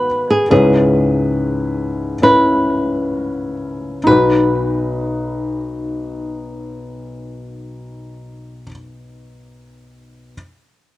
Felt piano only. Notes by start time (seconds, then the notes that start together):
Already playing: B3 F#4 B4
0.50 C#2 G#2 C#4 E4 B4
2.22 C#4 E4 B4
4.04 B1 D#4 F#4
4.11 B4